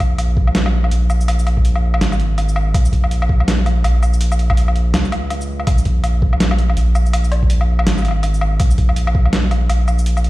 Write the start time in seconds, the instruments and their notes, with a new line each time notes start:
Already playing: sub bass A#1
0.00 kick, closed hi-hat, low woodblock
0.18 closed hi-hat, low woodblock
0.37 kick
0.47 low woodblock
0.55 snare, closed hi-hat
0.66 low woodblock
0.84 low woodblock
0.91 sub bass A#1, closed hi-hat
1.10 low woodblock, shaker
1.21 shaker
1.28 closed hi-hat, low woodblock
1.39 shaker
1.47 closed hi-hat, low woodblock
1.57 kick
1.65 closed hi-hat
1.76 low woodblock
1.94 low woodblock
2.01 sub bass G#1, snare, closed hi-hat
2.12 low woodblock, shaker
2.20 closed hi-hat
2.38 closed hi-hat, low woodblock
2.49 shaker
2.56 low woodblock
2.74 sub bass A#1, kick, closed hi-hat, low woodblock
2.85 shaker
2.93 kick, closed hi-hat
3.04 low woodblock
3.11 closed hi-hat
3.22 low woodblock
3.29 kick
3.40 low woodblock
3.48 snare, closed hi-hat
3.66 closed hi-hat, low woodblock
3.84 sub bass A#1, closed hi-hat, low woodblock
4.03 low woodblock, shaker
4.13 shaker
4.21 closed hi-hat
4.32 low woodblock, shaker
4.39 closed hi-hat
4.50 kick, low woodblock
4.57 closed hi-hat
4.68 low woodblock
4.76 closed hi-hat
4.94 sub bass C#2, snare, closed hi-hat, low woodblock
5.05 shaker
5.12 closed hi-hat, low woodblock
5.30 closed hi-hat, low woodblock
5.41 shaker
5.60 low woodblock
5.67 sub bass A#1, kick, closed hi-hat, low woodblock
5.78 shaker
5.85 kick, closed hi-hat
6.04 closed hi-hat, low woodblock
6.22 kick
6.33 low woodblock
6.40 snare, closed hi-hat
6.51 low woodblock
6.58 closed hi-hat
6.70 low woodblock
6.77 sub bass A#1, closed hi-hat
6.95 low woodblock, shaker
7.06 shaker
7.13 closed hi-hat, low woodblock
7.24 shaker
7.32 closed hi-hat, low woodblock
7.43 kick
7.50 closed hi-hat
7.61 low woodblock
7.79 low woodblock
7.87 sub bass G#1, snare, closed hi-hat
7.98 low woodblock, shaker
8.02 closed hi-hat, low woodblock
8.05 low woodblock
8.08 low woodblock
8.11 low woodblock
8.23 closed hi-hat, low woodblock
8.34 shaker
8.41 low woodblock
8.60 sub bass A#1, kick, closed hi-hat, low woodblock
8.70 shaker
8.78 kick, closed hi-hat
8.89 low woodblock
8.96 closed hi-hat
9.07 low woodblock
9.15 kick
9.25 low woodblock
9.33 snare, closed hi-hat
9.51 closed hi-hat, low woodblock
9.69 sub bass A#1, closed hi-hat, low woodblock
9.88 low woodblock, shaker
9.99 shaker
10.06 closed hi-hat
10.17 low woodblock, shaker
10.24 closed hi-hat